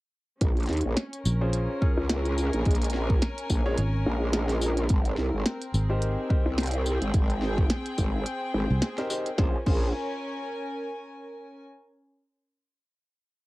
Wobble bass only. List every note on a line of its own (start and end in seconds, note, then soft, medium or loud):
0.41 0.68 A#1 loud
0.70 0.83 D#2 medium
0.86 0.96 A#1 medium
1.97 2.51 C#2 medium
2.54 2.64 A#1 medium
2.66 3.20 A#1 loud
3.50 3.76 A#1 medium
4.06 4.88 A#1 loud
4.90 5.16 G#1 loud
5.18 5.31 C2 medium
5.34 5.44 G#1 loud
6.46 6.99 C2 loud
7.02 7.12 G#1 loud
7.14 7.68 G#1 loud
7.98 8.24 G#1 loud
8.54 8.68 G#1 loud
9.38 9.55 A#1 medium
9.67 9.93 A#1 loud